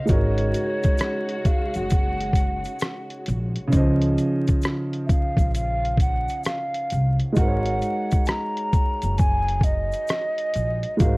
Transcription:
Already playing: string section C#3
0.05 upright piano G#3 D#4, string section G#3 F#4, flute C#5, kick, closed hi-hat, shaker
0.09 upright bass G#1, upright piano F#4 A#4
0.14 upright piano C#5
0.38 closed hi-hat
0.54 closed hi-hat, shaker
0.83 kick, closed hi-hat, shaker
0.98 cross-stick, closed hi-hat, shaker
1.29 closed hi-hat
1.45 flute F5, kick, closed hi-hat, shaker
1.74 upright bass F#1, flute F#5, closed hi-hat, shaker
1.90 kick, closed hi-hat, shaker
2.21 closed hi-hat
2.33 kick, closed hi-hat, shaker
2.64 closed hi-hat, shaker
2.79 cross-stick, closed hi-hat, shaker
3.10 closed hi-hat
3.26 upright bass A#1, closed hi-hat, shaker
3.56 closed hi-hat
3.68 upright piano C#3 C#4
3.72 upright bass C#2, upright piano D#4 C5, kick, closed hi-hat, shaker
3.76 upright piano F3 D#5
4.01 closed hi-hat
4.18 closed hi-hat, shaker
4.47 kick, closed hi-hat, shaker
4.62 cross-stick, closed hi-hat, shaker
4.93 closed hi-hat
5.05 flute E5
5.09 flute F5, kick, closed hi-hat, shaker
5.37 upright bass A#1, kick, closed hi-hat, shaker
5.55 flute F5, closed hi-hat, shaker
5.85 closed hi-hat
5.97 flute F#5, kick, closed hi-hat, shaker
6.28 closed hi-hat, shaker
6.44 flute F5, cross-stick, closed hi-hat, shaker
6.74 closed hi-hat
6.90 upright bass C2, closed hi-hat, shaker
7.20 closed hi-hat
7.32 upright piano G#3 D#4, shaker
7.37 upright bass G#1, upright piano F#4 A#4 C5, flute F#5, kick, closed hi-hat
7.47 upright piano C#5
7.66 closed hi-hat
7.82 closed hi-hat, shaker
8.11 kick, closed hi-hat, shaker
8.25 flute A#5, cross-stick, closed hi-hat, shaker
8.57 closed hi-hat
8.73 kick, closed hi-hat, shaker
9.02 upright bass F#1, closed hi-hat, shaker
9.18 flute G#5, kick, closed hi-hat, shaker
9.49 closed hi-hat
9.61 flute D#5, kick, closed hi-hat, shaker
9.92 closed hi-hat, shaker
10.07 cross-stick, closed hi-hat, shaker
10.38 closed hi-hat
10.54 upright bass A#1, closed hi-hat, shaker
10.83 closed hi-hat
10.97 upright bass G#1, upright piano G#3 D#4, flute F5, kick, closed hi-hat, shaker
11.01 upright piano F#4 A#4
11.05 upright piano C5

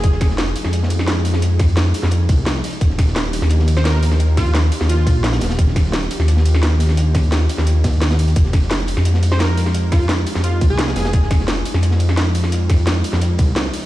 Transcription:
Already playing: detuned saw bass F1, analog synth pad F3 G#3 D#4, digital synth lead G#4
0.04 analog synth pad G#4, kick, closed hi-hat
0.12 snare
0.21 kick, snare, closed hi-hat, ride
0.30 snare
0.38 snare, closed hi-hat
0.48 closed hi-hat
0.56 closed hi-hat, open hi-hat, ride
0.65 detuned saw bass F2, snare
0.73 closed hi-hat
0.83 snare
0.90 closed hi-hat, ride
0.99 snare
1.08 snare, closed hi-hat
1.25 snare, closed hi-hat, open hi-hat, ride
1.34 snare
1.42 closed hi-hat
1.59 kick, snare, closed hi-hat, ride
1.69 closed hi-hat
1.77 snare, closed hi-hat
1.94 closed hi-hat, open hi-hat, ride
2.03 detuned saw bass F2, snare
2.11 closed hi-hat
2.29 detuned saw bass C2, kick, snare, closed hi-hat, ride
2.46 snare, closed hi-hat
2.54 snare
2.63 analog synth pad D4 G4, open hi-hat, ride
2.73 closed hi-hat
2.81 detuned saw bass D#1, kick, closed hi-hat
2.90 snare
2.98 kick, snare, closed hi-hat, ride
3.08 snare
3.16 snare, closed hi-hat
3.25 closed hi-hat
3.33 closed hi-hat, open hi-hat, ride
3.42 detuned saw bass D#2, snare
3.50 closed hi-hat
3.59 snare
3.68 closed hi-hat, ride
3.77 digital synth lead C5, snare
3.85 digital synth lead A#4, snare, closed hi-hat
4.03 snare, closed hi-hat, open hi-hat, ride
4.11 snare
4.20 closed hi-hat
4.37 digital synth lead F4, kick, snare, closed hi-hat, ride
4.46 closed hi-hat
4.54 snare, closed hi-hat
4.72 closed hi-hat, open hi-hat, ride
4.80 detuned saw bass D#2, snare
4.89 digital synth lead F4, closed hi-hat
5.06 detuned saw bass A#1, kick, snare, closed hi-hat, ride
5.23 snare, closed hi-hat
5.32 snare, closed hi-hat
5.41 detuned saw bass D#1, analog synth pad F4, snare, closed hi-hat, open hi-hat, ride
5.50 snare, closed hi-hat
5.59 kick, closed hi-hat
5.68 snare
5.76 kick, snare, closed hi-hat, ride
5.85 snare
5.92 snare, closed hi-hat
6.02 closed hi-hat
6.11 closed hi-hat, open hi-hat, ride
6.20 detuned saw bass D#2, snare
6.28 closed hi-hat
6.37 snare
6.46 closed hi-hat, ride
6.55 snare
6.62 snare, closed hi-hat
6.80 snare, closed hi-hat, open hi-hat, ride
6.89 snare
6.97 closed hi-hat
7.15 kick, snare, closed hi-hat, ride
7.24 closed hi-hat
7.32 snare, closed hi-hat
7.49 closed hi-hat, open hi-hat, ride
7.58 detuned saw bass D#2, snare
7.67 closed hi-hat
7.84 detuned saw bass D#2, kick, snare, closed hi-hat, ride
7.93 closed hi-hat
8.02 snare, closed hi-hat
8.10 snare, closed hi-hat
8.19 closed hi-hat, open hi-hat, ride
8.28 closed hi-hat
8.36 detuned saw bass F1, analog synth pad F3 G#3 D#4, kick, closed hi-hat
8.45 snare
8.53 kick, snare, closed hi-hat, ride
8.62 snare
8.71 snare, closed hi-hat
8.79 closed hi-hat
8.87 closed hi-hat, open hi-hat, ride
8.97 detuned saw bass F2, snare
9.05 closed hi-hat
9.14 snare
9.23 closed hi-hat, ride
9.32 digital synth lead C5, snare
9.39 digital synth lead A#4, snare, closed hi-hat
9.57 snare, closed hi-hat, open hi-hat, ride
9.66 snare
9.75 closed hi-hat
9.92 digital synth lead F4, kick, snare, closed hi-hat, ride
10.02 closed hi-hat
10.09 snare, closed hi-hat
10.26 closed hi-hat, open hi-hat, ride
10.35 detuned saw bass F2, snare
10.44 digital synth lead F4, closed hi-hat
10.61 detuned saw bass C2, kick, snare, closed hi-hat, ride
10.70 digital synth lead G#4
10.79 snare, closed hi-hat
10.87 snare, closed hi-hat
10.96 detuned saw bass F1, digital synth lead G#4, snare, closed hi-hat, open hi-hat, ride
11.05 snare, closed hi-hat
11.13 analog synth pad F4, kick, closed hi-hat
11.22 snare
11.30 kick, snare, closed hi-hat, ride
11.40 snare
11.48 snare, closed hi-hat
11.57 closed hi-hat
11.65 closed hi-hat, open hi-hat, ride
11.74 detuned saw bass F2, snare
11.83 closed hi-hat
11.91 snare
11.99 closed hi-hat, ride
12.09 snare
12.17 snare, closed hi-hat
12.35 snare, closed hi-hat, open hi-hat, ride
12.44 snare
12.52 closed hi-hat
12.69 kick, snare, closed hi-hat, ride
12.79 closed hi-hat
12.87 snare, closed hi-hat
13.04 closed hi-hat, open hi-hat, ride
13.13 detuned saw bass F2, snare
13.21 closed hi-hat
13.38 detuned saw bass C2, kick, snare, closed hi-hat, ride
13.56 snare, closed hi-hat
13.65 snare
13.73 analog synth pad F3 D4 G4, open hi-hat, ride
13.83 closed hi-hat

